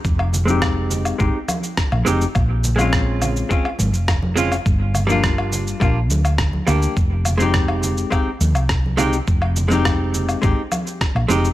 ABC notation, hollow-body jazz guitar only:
X:1
M:4/4
L:1/16
Q:1/4=104
K:Fm
V:1 name="Hollow-body jazz guitar"
z3 [A,CEG]4- [A,CEG] [A,CEG] z4 z [A,CEG] z | z3 [A,CDF]4- [A,CDF] [A,CDF] z4 z [A,CDF] z | z3 [G,B,=DF]4- [G,B,DF] [G,B,DF] z4 z [G,B,DG]2 | z3 [A,CEG]4- [A,CEG] [A,CEG] z4 z [A,CEG] z |
z3 [A,CEG]4- [A,CEG] [A,CEG] z4 z [A,CEG] z |]